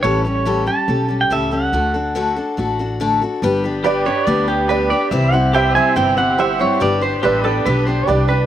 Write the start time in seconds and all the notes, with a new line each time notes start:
0.03 A1 A2 E3 G3 C#4 G4 A4 C#5
0.24 G3 C#4 G4 A4 C#5
0.45 A2 E3 G3 C#4 G4 A4
0.66 G3 C#4 G4 A4 A5
0.88 B1 G3 C#4 G4 A4
1.08 G3 C#4 G4 A4
1.21 G5
1.30 C#2 A2 E3 G3 C#4 G4 A4 E5
1.51 G3 C#4 G4 A4 F#5
1.73 D2 D3 A3 D4 F#4 A4
1.94 D4 F#4 A4
2.15 D3 A3 D4 F#4 A4
2.36 D4 F#4 A4
2.57 A1 A3 D4 F#4 A4
2.79 D4 F#4 A4
3.00 D3 A3 D4 F#4 A4
3.21 D4 F#4 A4
3.42 G1 G3 B3 D4 G4 B4
3.64 D4 G4 B4
3.83 G3 D4 G4 B4 D5
4.06 D4 G4 B4 C#5
4.26 D2 G3 D4 G4 B4 D5
4.48 D4 G4 B4
4.68 G3 D4 G4 B4 D5
4.90 D4 G4 B4 D5
5.11 C2 C3 E3 G3 C4 E4 C5 E5
5.32 G3 C4 E4 C5 F#5
5.53 G3 C4 E4 G4 B4 C5 D5 E5 G5
5.75 G3 C4 E4 C5 G#5
5.81 E5
5.96 G1 C3 E3 G3 C4 E4 C5 G5
6.17 G3 C4 E4 C5 F#5
6.38 G3 C4 E4 G4 C5 E5 F#5
6.59 G3 C4 E4 C5 C#5
6.80 G1 G3 B3 D4 G4 B4 D5
7.01 D4 G4 B4 C5
7.22 A1 G3 D4 G4 B4 C5 D5 E5
7.44 D4 G4 A4 B4
7.50 D5
7.66 B1 G3 D4 G4 B4
7.87 D4 G4 B4 C5
8.07 C2 G3 D4 G4 B4 D5
8.28 D4 G4 B4